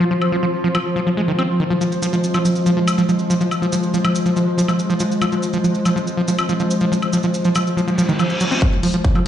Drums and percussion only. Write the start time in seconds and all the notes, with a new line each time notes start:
0.22 high woodblock
0.75 high woodblock
1.39 high woodblock
1.81 maracas
1.92 maracas
2.02 maracas
2.13 maracas
2.24 maracas
2.34 high woodblock, maracas
2.45 maracas
2.56 maracas
2.66 maracas
2.88 high woodblock, maracas
2.98 maracas
3.09 maracas
3.19 maracas
3.30 maracas
3.41 maracas
3.51 high woodblock, maracas
3.63 maracas
3.72 maracas
3.83 maracas
3.94 maracas
4.05 high woodblock, maracas
4.15 maracas
4.26 maracas
4.36 maracas
4.58 maracas
4.68 high woodblock, maracas
4.79 maracas
4.90 maracas
5.00 maracas
5.12 maracas
5.22 high woodblock, maracas
5.32 maracas
5.43 maracas
5.53 maracas
5.64 maracas
5.75 maracas
5.85 high woodblock, maracas
5.97 maracas
6.07 maracas
6.28 maracas
6.38 high woodblock, maracas
6.49 maracas
6.60 maracas
6.71 maracas
6.80 maracas
6.93 maracas
7.02 high woodblock, maracas
7.13 maracas
7.23 maracas
7.34 maracas
7.45 maracas
7.55 high woodblock, maracas
7.67 maracas
7.78 maracas
7.88 maracas
7.98 maracas
8.09 maracas
8.19 high woodblock, maracas
8.30 maracas
8.40 maracas
8.51 maracas
8.62 kick, closed hi-hat
8.73 closed hi-hat
8.83 open hi-hat
8.94 closed hi-hat
9.05 kick, closed hi-hat
9.15 closed hi-hat, high woodblock